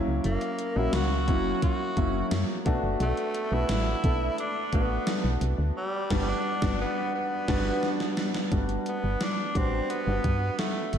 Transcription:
Already playing: F#3 A#3 C#4 E4
0.07 C#2
0.24 F#1 A#3, closed hi-hat
0.41 closed hi-hat
0.59 closed hi-hat
0.76 A#1 F#3 A#3 C#4 E4 F#4
0.93 C#2 F#4, snare, closed hi-hat, tambourine
1.27 F#1 F#3 A#3 C#4 E4, kick, closed hi-hat
1.62 F#4, kick, closed hi-hat
1.97 F#1 F#3 A#3 C#4 E4, kick, closed hi-hat
2.31 F#2, snare, closed hi-hat, tambourine
2.65 B1 A3 B3 D4 F#4, kick, closed hi-hat
2.83 F#1
3.00 B1 A3, closed hi-hat
3.17 closed hi-hat
3.35 closed hi-hat
3.51 B1 A3 B3 D4 E4 F#4
3.69 A1, snare, closed hi-hat, tambourine
4.03 B1 A3 B3 D4 A4, kick, closed hi-hat
4.38 D4, closed hi-hat
4.72 A1 A3 B3 D4 F#4, kick, closed hi-hat
5.07 snare, closed hi-hat, tambourine
5.24 B1
5.41 C2, closed hi-hat
5.58 D2
5.77 G3
6.10 G1 G3 B3 D4 F#4, kick, snare, crash
6.29 D4
6.62 G1 G3 B3 D4 F#4, kick, snare
6.81 B3
7.15 B3
7.48 G1 G3 B3 D4 F#4, kick, snare, crash
7.83 snare
8.00 snare
8.17 snare
8.34 snare
8.51 G1 G3 A3 D4 F#4, kick, closed hi-hat
8.58 B3
8.69 closed hi-hat
8.86 B3, closed hi-hat
9.03 G1
9.21 D4, snare, closed hi-hat
9.55 A1 G3 C4 D4 F#4 B4, kick, closed hi-hat
9.90 B3, closed hi-hat
10.06 G1 G3 B3 D4 F#4
10.24 G2, kick, closed hi-hat
10.59 A3, snare, closed hi-hat
10.93 G1, closed hi-hat

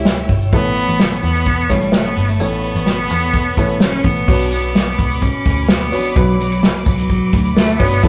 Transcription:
Already playing: C#2 C#3 C#4 E4 G4 C#5 G5 E6
0.05 snare
0.18 closed hi-hat
0.29 G1, kick, closed hi-hat
0.41 closed hi-hat
0.52 A1 A2 B3 C#4 E4 A4 B4 A5 C#6, kick, closed hi-hat
0.77 closed hi-hat
0.88 A1, closed hi-hat
1.00 snare
1.11 closed hi-hat
1.23 E2 B3, closed hi-hat
1.35 closed hi-hat
1.45 kick, closed hi-hat
1.69 A1 G3 C#4 E4 A4 C#5, kick, snare, closed hi-hat
1.81 closed hi-hat
1.92 A3, snare
2.06 B3
2.16 G1, closed hi-hat
2.28 A3, closed hi-hat
2.40 A1 A2 B3 C#4 E4 A4 C#5, closed hi-hat
2.52 closed hi-hat
2.63 closed hi-hat
2.75 A1, closed hi-hat
2.86 snare
3.10 E2, closed hi-hat
3.22 closed hi-hat
3.33 kick, closed hi-hat
3.46 closed hi-hat
3.57 A1 C#4 E4 A4 B4, kick, closed hi-hat
3.69 closed hi-hat
3.80 C#4, snare
4.04 A1 B3, kick, open hi-hat
4.16 closed hi-hat
4.28 B1 B2 C#4 D4 F#4 B4 B5 D6, kick, crash, shaker
4.40 closed hi-hat, shaker
4.52 B3, closed hi-hat, shaker
4.63 closed hi-hat, shaker
4.75 snare, shaker
4.87 closed hi-hat, shaker
4.98 C#2, kick, closed hi-hat, shaker
5.10 closed hi-hat, shaker
5.22 C#4, kick, closed hi-hat, shaker
5.35 shaker
5.45 D2, kick, closed hi-hat, shaker
5.57 closed hi-hat, shaker
5.68 B3, snare, shaker
5.80 closed hi-hat, shaker
5.92 A1 C#4 D4 F#4 B4, open hi-hat
6.03 closed hi-hat, shaker
6.15 B1 B2 F#3 C#4 D4 F#4 B4, kick, closed hi-hat, shaker
6.27 closed hi-hat, shaker
6.38 F#3, closed hi-hat, shaker
6.50 closed hi-hat, shaker
6.62 snare, shaker
6.74 closed hi-hat, shaker
6.86 C#2 F#3, kick, closed hi-hat, shaker
6.97 closed hi-hat, shaker
7.09 kick, closed hi-hat, shaker
7.22 shaker
7.32 D2, kick, closed hi-hat, shaker
7.44 closed hi-hat, shaker
7.55 A3, snare, shaker
7.67 closed hi-hat, shaker
7.79 G1 B3 C#4 D4 F#4 B4, kick, open hi-hat
7.90 closed hi-hat, shaker
8.02 A1 A2 A3 D4 E4 A4 D5 A5 E6, kick, closed hi-hat, shaker

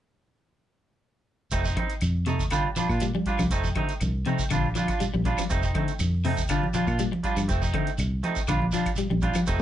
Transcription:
1.51 F1 A3 C4 D#4, kick, closed hi-hat, shekere
1.65 C4 D#4, shekere
1.76 C4 D#4, muted clean electric guitar stroke, kick, closed hi-hat, high conga, claves
1.90 closed hi-hat, shekere
2.01 F2, closed hi-hat, claves, shekere
2.26 C3 A3 D#4, closed hi-hat, high conga, shekere
2.39 kick, shekere
2.50 A#1 D3 G3 D4 F4, kick, closed hi-hat, claves, shekere
2.76 F3 G3 D4 F4, closed hi-hat, shekere
2.89 A#2 D4 F4, kick, claves, shekere
3.00 G3, closed hi-hat, shekere
3.15 G3, high conga
3.26 G3 D4 F4, kick, closed hi-hat, shekere
3.39 C2 F3, high conga, claves, shekere
3.51 F1 A3 C4 D#4, kick, closed hi-hat, shekere
3.64 shekere
3.75 D3 A3 C4 D#4, kick, closed hi-hat, high conga, claves
3.89 closed hi-hat, shekere
4.00 C2, closed hi-hat, high conga, claves, shekere
4.25 C3 A3 C4 D#4, closed hi-hat, high conga, shekere
4.39 kick, shekere
4.50 A#1 D3 G3 D4 F4, kick, closed hi-hat, claves, shekere
4.75 F3 G3 D4 F4, closed hi-hat, shekere
4.88 D4 F4, kick, closed hi-hat, claves, shekere
5.00 G3, muted fingered electric bass stroke, closed hi-hat, shekere
5.14 A#1 G3, high conga
5.25 G3 D4 F4, kick, closed hi-hat, high conga, shekere
5.38 F3, muted fingered electric bass stroke, closed hi-hat, high conga, claves, shekere
5.50 F1 A3 C4 D#4, kick, closed hi-hat, shekere
5.63 C4 D#4, shekere
5.75 D3 A3 C4 D#4, kick, closed hi-hat, high conga, claves
5.88 closed hi-hat, shekere
5.99 F2, closed hi-hat, high conga, claves, shekere
6.24 C3 A3 C4 D#4, open hi-hat, high conga, shekere
6.37 kick, shekere
6.48 A#1 D3 G3 D4 F4, kick, closed hi-hat, claves, shekere
6.63 high conga
6.74 F3 G3 D4 F4, closed hi-hat, shekere
6.87 A#2 D4 F4, kick, claves, shekere
6.99 G3, closed hi-hat, shekere
7.12 muted clean electric guitar stroke, high conga
7.23 G3 D4 F4, kick, closed hi-hat, shekere
7.37 G2 F3, high conga, claves, shekere
7.48 F1 A3 C4, muted clean electric guitar stroke, kick, closed hi-hat, shekere
7.62 C4 D#4, shekere
7.73 D3 A3 C4 D#4, kick, closed hi-hat, high conga, claves
7.87 closed hi-hat, shekere
7.98 C2, closed hi-hat, claves, shekere
8.23 A3 C4 D#4, closed hi-hat, high conga, shekere
8.36 kick, shekere
8.47 A#1 D3 G3 D4 F4, kick, closed hi-hat, claves, shekere
8.62 high conga
8.72 F3 G3 D4 F4, closed hi-hat, shekere
8.85 kick, closed hi-hat, claves, shekere
8.96 G3, muted fingered electric bass stroke, closed hi-hat, shekere
9.10 A#1 G3, high conga
9.21 G3 D4 F4, kick, closed hi-hat, high conga, shekere
9.34 F3, muted fingered electric bass stroke, closed hi-hat, high conga, claves, shekere
9.46 F1 A3 C4 D#4, kick, closed hi-hat, shekere

